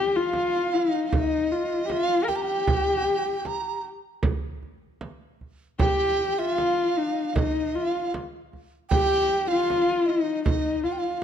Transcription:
Already playing: horsehead fiddle G4
0.08 dizi G5
0.16 horsehead fiddle F4, dizi F5
0.33 frame drum
0.75 horsehead fiddle D#4
1.12 horsehead fiddle D#4, dizi D#5, frame drum
1.51 horsehead fiddle F4, frame drum
1.87 horsehead fiddle G4, dizi F5, frame drum
1.91 horsehead fiddle F4
2.24 horsehead fiddle A#4, dizi G5
2.28 horsehead fiddle G4, frame drum
2.36 dizi A#5
2.42 dizi G5
2.67 frame drum
3.05 frame drum
3.45 dizi A#5, frame drum
4.23 frame drum
4.63 frame drum
5.01 frame drum
5.41 frame drum
5.79 horsehead fiddle G4, dizi G5, frame drum
6.19 frame drum
6.32 horsehead fiddle G4
6.39 horsehead fiddle F4, dizi E5
6.57 dizi F5, frame drum
6.97 horsehead fiddle D#4
7.36 horsehead fiddle D#4, dizi D#5, frame drum
7.74 horsehead fiddle F4, dizi F5, frame drum
8.14 frame drum
8.53 frame drum
8.89 horsehead fiddle G4, dizi G5, frame drum
9.32 frame drum
9.48 horsehead fiddle F4, dizi F5
9.70 frame drum
10.06 horsehead fiddle D#4, dizi D#5
10.44 dizi D#5, frame drum
10.49 horsehead fiddle D#4
10.84 horsehead fiddle F4, dizi F5, frame drum
10.92 dizi G5
10.99 dizi F5

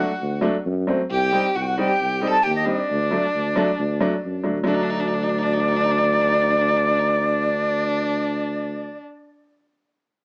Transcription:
Already playing: violin F#4, flute F#5
0.21 tuba D2
0.41 upright piano F#3 A3 D4
0.66 tuba F#2
0.87 upright piano F#3 A3 C4
1.10 tuba C2, violin G4, flute G5
1.32 upright piano G3 C4 D#4
1.55 tuba C2, violin F#4, flute F#5
1.62 violin F#4, flute G5
1.67 flute F#5
1.77 upright piano G3 C4 D#4, violin G4, flute G5
2.01 tuba C2
2.21 upright piano G3 C4 D#4
2.27 violin A4, flute A5
2.42 tuba D#2, violin G4, flute G5
2.55 flute D#5
2.64 upright piano G3 C4 D#4, violin D4, flute D5
2.90 tuba D2
3.11 upright piano F#3 A3 D4
3.35 tuba D2
3.56 upright piano F#3 A3 D4
3.79 tuba D2
4.01 upright piano F#3 A3 D4
4.25 tuba F#2
4.44 tuba D2, upright piano F#3 A3 D4
4.64 tuba D2, upright piano F#3 A3 D4, violin D4, flute D5
4.74 violin D#4
4.83 violin D4
4.90 violin D#4
5.00 violin D4
5.08 violin D#4
5.14 violin D4
5.23 violin D#4
5.29 violin D4
5.38 violin D#4
5.43 violin D4
5.53 violin D#4
5.60 violin D4
5.68 violin D#4
5.76 violin D4
5.83 violin D#4
5.91 violin D4
5.98 violin D#4
6.04 violin D4
6.12 violin D#4
6.21 violin D4
6.28 violin D#4
6.34 violin D4
6.42 violin D#4
6.51 violin D4
6.57 violin D4 D#4
6.68 violin D#4
6.77 violin D4
6.85 violin D#4
6.91 violin D4
6.99 violin D#4
7.08 violin D4
7.15 violin D#4
7.23 violin D4

